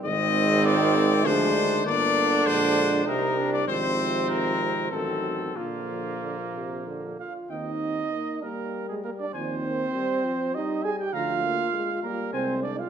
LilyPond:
<<
  \new Staff \with { instrumentName = "Trumpet" } { \time 3/4 \key ees \major \tempo 4 = 98 ees''4 d''4 c''4 | d''4 c''4 bes'8. d''16 | c''4 bes'4 a'4 | f'2~ f'8 r8 |
g''8 r2 r8 | aes''8 r2 r8 | bes''8 r4. aes''8 r8 | }
  \new Staff \with { instrumentName = "Trumpet" } { \time 3/4 \key ees \major c'2 d'4 | d'2 ees'8 d'8 | c'2 c'4 | bes2~ bes8 f''8 |
ees''4. bes'8. aes'16 bes'16 d''16 | c''2 ees''8 aes''16 g''16 | f''4. bes'8 c''8 d''16 f''16 | }
  \new Staff \with { instrumentName = "Trombone" } { \time 3/4 \key ees \major ees2 f8 ees8 | d2 c4 | c2 ees4 | d4 d8 c8 d8 f'8 |
ees'4. bes8. aes16 bes16 d'16 | c'2 ees'8 aes'16 g'16 | f'4. bes8 c'8 d'16 f'16 | }
  \new Staff \with { instrumentName = "French horn" } { \clef bass \time 3/4 \key ees \major aes2 aes4 | bes4 aes4 g4 | f2 fis4 | f2~ f8 r8 |
c'4 bes8 g4. | f8 ees8 g8 f8 g4 | f8 bes8 aes8 g8 aes4 | }
  \new Staff \with { instrumentName = "Tuba" } { \clef bass \time 3/4 \key ees \major aes,,2 d,4 | g,,4 bes,,4 c,4 | aes,,2 a,,4 | bes,,2~ bes,,8 r8 |
ees,4 r2 | ees,4 r2 | d,4 r4 c,4 | }
>>